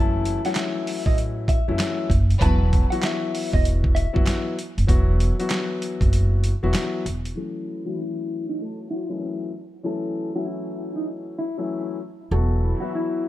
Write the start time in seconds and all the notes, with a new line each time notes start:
Already playing: F#1 E3 F#3 A3 C#4 E4 A5
0.25 closed hi-hat
0.45 E3 F#3 A3 C#4 E4 F#5, snare, closed hi-hat
0.55 E5, finger snap, snare, clap, closed hi-hat
0.87 open hi-hat
1.06 A1 D#5, kick
1.18 closed hi-hat
1.48 E5, kick, closed hi-hat
1.68 F#1 E3 F#3 A3 C#4 E4
1.79 finger snap, snare, clap, closed hi-hat
2.10 F#1, kick, closed hi-hat
2.30 closed hi-hat
2.40 E1 E3 F#3 B3 E4 F#4 B4 A5, kick, closed hi-hat
2.73 kick, closed hi-hat
2.90 E3 F#3 B3 E4 F#4 F#5, closed hi-hat
3.03 E5, finger snap, snare, clap, closed hi-hat
3.35 open hi-hat
3.53 E1 D#5, kick
3.65 closed hi-hat
3.84 kick
3.95 E5, closed hi-hat
4.13 F#1 E3 F#3 B3 E4 F#4, kick
4.26 finger snap, snare, clap, closed hi-hat
4.59 closed hi-hat
4.78 F#1, closed hi-hat
4.87 E1 E3 F#3 B3 E4 F#4, kick, closed hi-hat
5.20 closed hi-hat
5.39 E3 F#3 B3 E4 F#4, closed hi-hat
5.50 finger snap, snare, clap, closed hi-hat
5.82 closed hi-hat
6.01 F#1, kick, closed hi-hat
6.13 closed hi-hat
6.44 closed hi-hat
6.63 E1 E3 F#3 B3 E4 F#4
6.74 finger snap, snare, clap, closed hi-hat
7.06 E1, closed hi-hat
7.25 closed hi-hat
7.35 E3 F#3 A3 C#4 E4 A4
7.66 E3 E4
7.85 E3 F#3 A3 C#4 E4 F#4
7.98 E4
8.49 D#4
8.60 A3 A4
8.90 F#3 E4 F#4
9.09 E3 F#3 A3 C#4 E4
9.83 E3 F#3 A3 C#4 E4 A4
10.35 E3 F#3 A3 C#4 E4 F#4
10.45 E4
10.96 D#4
11.39 E4
11.57 E3 F#3 A3 C#4 E4
12.31 E1 E3 F#3 B3 E4 F#4 A4
12.62 E3 E4
12.80 E3 F#3 B3 E4 F#4
12.95 E4